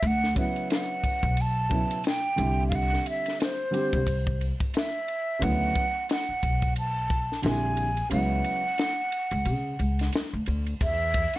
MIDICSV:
0, 0, Header, 1, 6, 480
1, 0, Start_track
1, 0, Key_signature, 2, "major"
1, 0, Tempo, 674157
1, 18, Time_signature, 4, 2, 24, 8
1, 8109, End_track
2, 0, Start_track
2, 0, Title_t, "Flute"
2, 0, Program_c, 0, 73
2, 48, Note_on_c, 0, 78, 109
2, 273, Note_off_c, 0, 78, 0
2, 280, Note_on_c, 0, 78, 79
2, 493, Note_off_c, 0, 78, 0
2, 520, Note_on_c, 0, 78, 92
2, 1005, Note_on_c, 0, 81, 95
2, 1016, Note_off_c, 0, 78, 0
2, 1471, Note_off_c, 0, 81, 0
2, 1485, Note_on_c, 0, 79, 101
2, 1880, Note_off_c, 0, 79, 0
2, 1915, Note_on_c, 0, 77, 75
2, 1959, Note_on_c, 0, 78, 101
2, 1970, Note_off_c, 0, 77, 0
2, 2188, Note_off_c, 0, 78, 0
2, 2204, Note_on_c, 0, 76, 84
2, 2415, Note_off_c, 0, 76, 0
2, 2438, Note_on_c, 0, 72, 93
2, 3174, Note_off_c, 0, 72, 0
2, 3388, Note_on_c, 0, 76, 91
2, 3869, Note_on_c, 0, 78, 108
2, 3880, Note_off_c, 0, 76, 0
2, 4343, Note_off_c, 0, 78, 0
2, 4356, Note_on_c, 0, 78, 97
2, 4798, Note_off_c, 0, 78, 0
2, 4834, Note_on_c, 0, 81, 88
2, 5277, Note_off_c, 0, 81, 0
2, 5319, Note_on_c, 0, 80, 92
2, 5760, Note_off_c, 0, 80, 0
2, 5783, Note_on_c, 0, 78, 98
2, 7192, Note_off_c, 0, 78, 0
2, 7708, Note_on_c, 0, 76, 102
2, 8098, Note_off_c, 0, 76, 0
2, 8109, End_track
3, 0, Start_track
3, 0, Title_t, "Grand piano"
3, 0, Program_c, 1, 0
3, 247, Note_on_c, 1, 49, 53
3, 253, Note_on_c, 1, 54, 53
3, 262, Note_on_c, 1, 59, 59
3, 266, Note_on_c, 1, 64, 67
3, 931, Note_off_c, 1, 49, 0
3, 934, Note_off_c, 1, 54, 0
3, 939, Note_off_c, 1, 59, 0
3, 941, Note_off_c, 1, 64, 0
3, 1206, Note_on_c, 1, 49, 51
3, 1212, Note_on_c, 1, 54, 51
3, 1220, Note_on_c, 1, 59, 46
3, 1227, Note_on_c, 1, 64, 70
3, 1390, Note_off_c, 1, 49, 0
3, 1393, Note_off_c, 1, 54, 0
3, 1398, Note_off_c, 1, 59, 0
3, 1401, Note_off_c, 1, 64, 0
3, 1681, Note_on_c, 1, 50, 66
3, 1688, Note_on_c, 1, 55, 60
3, 1696, Note_on_c, 1, 60, 61
3, 1705, Note_on_c, 1, 64, 75
3, 2541, Note_off_c, 1, 50, 0
3, 2545, Note_off_c, 1, 55, 0
3, 2549, Note_off_c, 1, 60, 0
3, 2553, Note_off_c, 1, 64, 0
3, 2639, Note_on_c, 1, 50, 60
3, 2646, Note_on_c, 1, 55, 62
3, 2657, Note_on_c, 1, 60, 56
3, 2662, Note_on_c, 1, 67, 63
3, 2827, Note_off_c, 1, 50, 0
3, 2830, Note_off_c, 1, 55, 0
3, 2836, Note_off_c, 1, 60, 0
3, 2839, Note_off_c, 1, 67, 0
3, 3839, Note_on_c, 1, 49, 60
3, 3846, Note_on_c, 1, 54, 58
3, 3853, Note_on_c, 1, 59, 63
3, 3863, Note_on_c, 1, 64, 68
3, 4143, Note_off_c, 1, 49, 0
3, 4147, Note_off_c, 1, 54, 0
3, 4151, Note_off_c, 1, 59, 0
3, 4155, Note_off_c, 1, 64, 0
3, 5284, Note_on_c, 1, 50, 61
3, 5293, Note_on_c, 1, 55, 54
3, 5299, Note_on_c, 1, 60, 58
3, 5308, Note_on_c, 1, 64, 72
3, 5586, Note_off_c, 1, 50, 0
3, 5590, Note_off_c, 1, 55, 0
3, 5593, Note_off_c, 1, 60, 0
3, 5598, Note_off_c, 1, 64, 0
3, 5764, Note_on_c, 1, 49, 68
3, 5771, Note_on_c, 1, 54, 64
3, 5780, Note_on_c, 1, 59, 55
3, 5789, Note_on_c, 1, 64, 71
3, 6121, Note_off_c, 1, 49, 0
3, 6125, Note_off_c, 1, 54, 0
3, 6129, Note_off_c, 1, 59, 0
3, 6133, Note_off_c, 1, 64, 0
3, 8109, End_track
4, 0, Start_track
4, 0, Title_t, "Upright bass"
4, 0, Program_c, 2, 32
4, 22, Note_on_c, 2, 38, 112
4, 220, Note_off_c, 2, 38, 0
4, 876, Note_on_c, 2, 35, 91
4, 1276, Note_off_c, 2, 35, 0
4, 1699, Note_on_c, 2, 36, 92
4, 2099, Note_off_c, 2, 36, 0
4, 2802, Note_on_c, 2, 36, 90
4, 3199, Note_off_c, 2, 36, 0
4, 3861, Note_on_c, 2, 38, 112
4, 4059, Note_off_c, 2, 38, 0
4, 4579, Note_on_c, 2, 35, 75
4, 5168, Note_off_c, 2, 35, 0
4, 5295, Note_on_c, 2, 34, 89
4, 5696, Note_off_c, 2, 34, 0
4, 5776, Note_on_c, 2, 37, 107
4, 5977, Note_off_c, 2, 37, 0
4, 6632, Note_on_c, 2, 37, 90
4, 6732, Note_on_c, 2, 49, 96
4, 6743, Note_off_c, 2, 37, 0
4, 6934, Note_off_c, 2, 49, 0
4, 6975, Note_on_c, 2, 37, 94
4, 7176, Note_off_c, 2, 37, 0
4, 7358, Note_on_c, 2, 38, 91
4, 7442, Note_off_c, 2, 38, 0
4, 7459, Note_on_c, 2, 38, 95
4, 7658, Note_off_c, 2, 38, 0
4, 7697, Note_on_c, 2, 40, 104
4, 8012, Note_off_c, 2, 40, 0
4, 8109, End_track
5, 0, Start_track
5, 0, Title_t, "Muted upright bass strokes"
5, 4477, Note_on_c, 9, 29, 44
5, 4548, Note_off_c, 9, 29, 0
5, 8109, End_track
6, 0, Start_track
6, 0, Title_t, "Drums"
6, 19, Note_on_c, 9, 36, 106
6, 19, Note_on_c, 9, 51, 80
6, 90, Note_off_c, 9, 36, 0
6, 90, Note_off_c, 9, 51, 0
6, 169, Note_on_c, 9, 38, 30
6, 240, Note_off_c, 9, 38, 0
6, 258, Note_on_c, 9, 36, 89
6, 260, Note_on_c, 9, 51, 61
6, 329, Note_off_c, 9, 36, 0
6, 331, Note_off_c, 9, 51, 0
6, 399, Note_on_c, 9, 51, 40
6, 470, Note_off_c, 9, 51, 0
6, 501, Note_on_c, 9, 44, 43
6, 501, Note_on_c, 9, 51, 60
6, 512, Note_on_c, 9, 38, 95
6, 572, Note_off_c, 9, 44, 0
6, 572, Note_off_c, 9, 51, 0
6, 583, Note_off_c, 9, 38, 0
6, 738, Note_on_c, 9, 36, 82
6, 740, Note_on_c, 9, 51, 62
6, 809, Note_off_c, 9, 36, 0
6, 811, Note_off_c, 9, 51, 0
6, 876, Note_on_c, 9, 36, 90
6, 947, Note_off_c, 9, 36, 0
6, 974, Note_on_c, 9, 51, 64
6, 1045, Note_off_c, 9, 51, 0
6, 1217, Note_on_c, 9, 36, 76
6, 1217, Note_on_c, 9, 51, 47
6, 1288, Note_off_c, 9, 36, 0
6, 1288, Note_off_c, 9, 51, 0
6, 1357, Note_on_c, 9, 51, 44
6, 1428, Note_off_c, 9, 51, 0
6, 1452, Note_on_c, 9, 44, 44
6, 1452, Note_on_c, 9, 51, 62
6, 1474, Note_on_c, 9, 38, 93
6, 1523, Note_off_c, 9, 44, 0
6, 1523, Note_off_c, 9, 51, 0
6, 1545, Note_off_c, 9, 38, 0
6, 1694, Note_on_c, 9, 51, 54
6, 1765, Note_off_c, 9, 51, 0
6, 1935, Note_on_c, 9, 51, 70
6, 1936, Note_on_c, 9, 36, 113
6, 2006, Note_off_c, 9, 51, 0
6, 2007, Note_off_c, 9, 36, 0
6, 2088, Note_on_c, 9, 38, 31
6, 2159, Note_off_c, 9, 38, 0
6, 2178, Note_on_c, 9, 51, 65
6, 2249, Note_off_c, 9, 51, 0
6, 2319, Note_on_c, 9, 51, 41
6, 2337, Note_on_c, 9, 38, 33
6, 2390, Note_off_c, 9, 51, 0
6, 2409, Note_off_c, 9, 38, 0
6, 2422, Note_on_c, 9, 44, 48
6, 2422, Note_on_c, 9, 51, 57
6, 2434, Note_on_c, 9, 38, 100
6, 2493, Note_off_c, 9, 44, 0
6, 2493, Note_off_c, 9, 51, 0
6, 2505, Note_off_c, 9, 38, 0
6, 2660, Note_on_c, 9, 51, 69
6, 2732, Note_off_c, 9, 51, 0
6, 2799, Note_on_c, 9, 36, 91
6, 2800, Note_on_c, 9, 51, 41
6, 2870, Note_off_c, 9, 36, 0
6, 2871, Note_off_c, 9, 51, 0
6, 2895, Note_on_c, 9, 36, 89
6, 2901, Note_on_c, 9, 51, 62
6, 2967, Note_off_c, 9, 36, 0
6, 2972, Note_off_c, 9, 51, 0
6, 3039, Note_on_c, 9, 36, 99
6, 3110, Note_off_c, 9, 36, 0
6, 3140, Note_on_c, 9, 51, 46
6, 3211, Note_off_c, 9, 51, 0
6, 3278, Note_on_c, 9, 36, 85
6, 3278, Note_on_c, 9, 51, 46
6, 3349, Note_off_c, 9, 36, 0
6, 3349, Note_off_c, 9, 51, 0
6, 3374, Note_on_c, 9, 44, 45
6, 3374, Note_on_c, 9, 51, 65
6, 3395, Note_on_c, 9, 38, 110
6, 3445, Note_off_c, 9, 44, 0
6, 3445, Note_off_c, 9, 51, 0
6, 3467, Note_off_c, 9, 38, 0
6, 3618, Note_on_c, 9, 51, 53
6, 3689, Note_off_c, 9, 51, 0
6, 3859, Note_on_c, 9, 51, 80
6, 3860, Note_on_c, 9, 36, 111
6, 3930, Note_off_c, 9, 51, 0
6, 3931, Note_off_c, 9, 36, 0
6, 4098, Note_on_c, 9, 36, 86
6, 4098, Note_on_c, 9, 51, 58
6, 4169, Note_off_c, 9, 36, 0
6, 4169, Note_off_c, 9, 51, 0
6, 4338, Note_on_c, 9, 44, 49
6, 4338, Note_on_c, 9, 51, 66
6, 4350, Note_on_c, 9, 38, 94
6, 4409, Note_off_c, 9, 44, 0
6, 4409, Note_off_c, 9, 51, 0
6, 4421, Note_off_c, 9, 38, 0
6, 4578, Note_on_c, 9, 36, 86
6, 4580, Note_on_c, 9, 51, 69
6, 4649, Note_off_c, 9, 36, 0
6, 4651, Note_off_c, 9, 51, 0
6, 4714, Note_on_c, 9, 51, 45
6, 4716, Note_on_c, 9, 36, 84
6, 4785, Note_off_c, 9, 51, 0
6, 4787, Note_off_c, 9, 36, 0
6, 4813, Note_on_c, 9, 51, 67
6, 4884, Note_off_c, 9, 51, 0
6, 5055, Note_on_c, 9, 51, 46
6, 5056, Note_on_c, 9, 36, 88
6, 5126, Note_off_c, 9, 51, 0
6, 5128, Note_off_c, 9, 36, 0
6, 5212, Note_on_c, 9, 38, 34
6, 5283, Note_off_c, 9, 38, 0
6, 5290, Note_on_c, 9, 44, 48
6, 5290, Note_on_c, 9, 51, 59
6, 5312, Note_on_c, 9, 38, 109
6, 5361, Note_off_c, 9, 44, 0
6, 5361, Note_off_c, 9, 51, 0
6, 5383, Note_off_c, 9, 38, 0
6, 5531, Note_on_c, 9, 51, 53
6, 5603, Note_off_c, 9, 51, 0
6, 5674, Note_on_c, 9, 51, 44
6, 5745, Note_off_c, 9, 51, 0
6, 5772, Note_on_c, 9, 51, 75
6, 5843, Note_off_c, 9, 51, 0
6, 6011, Note_on_c, 9, 51, 58
6, 6083, Note_off_c, 9, 51, 0
6, 6250, Note_on_c, 9, 44, 48
6, 6250, Note_on_c, 9, 51, 64
6, 6262, Note_on_c, 9, 38, 108
6, 6321, Note_off_c, 9, 44, 0
6, 6321, Note_off_c, 9, 51, 0
6, 6333, Note_off_c, 9, 38, 0
6, 6494, Note_on_c, 9, 51, 63
6, 6566, Note_off_c, 9, 51, 0
6, 6629, Note_on_c, 9, 51, 46
6, 6700, Note_off_c, 9, 51, 0
6, 6731, Note_on_c, 9, 51, 58
6, 6802, Note_off_c, 9, 51, 0
6, 6971, Note_on_c, 9, 51, 46
6, 7042, Note_off_c, 9, 51, 0
6, 7113, Note_on_c, 9, 51, 43
6, 7129, Note_on_c, 9, 38, 36
6, 7185, Note_off_c, 9, 51, 0
6, 7200, Note_off_c, 9, 38, 0
6, 7209, Note_on_c, 9, 44, 45
6, 7209, Note_on_c, 9, 51, 65
6, 7230, Note_on_c, 9, 38, 106
6, 7280, Note_off_c, 9, 44, 0
6, 7280, Note_off_c, 9, 51, 0
6, 7302, Note_off_c, 9, 38, 0
6, 7449, Note_on_c, 9, 51, 55
6, 7520, Note_off_c, 9, 51, 0
6, 7593, Note_on_c, 9, 51, 40
6, 7665, Note_off_c, 9, 51, 0
6, 7694, Note_on_c, 9, 51, 73
6, 7696, Note_on_c, 9, 36, 112
6, 7765, Note_off_c, 9, 51, 0
6, 7767, Note_off_c, 9, 36, 0
6, 7931, Note_on_c, 9, 51, 72
6, 7934, Note_on_c, 9, 36, 96
6, 8002, Note_off_c, 9, 51, 0
6, 8006, Note_off_c, 9, 36, 0
6, 8070, Note_on_c, 9, 51, 43
6, 8109, Note_off_c, 9, 51, 0
6, 8109, End_track
0, 0, End_of_file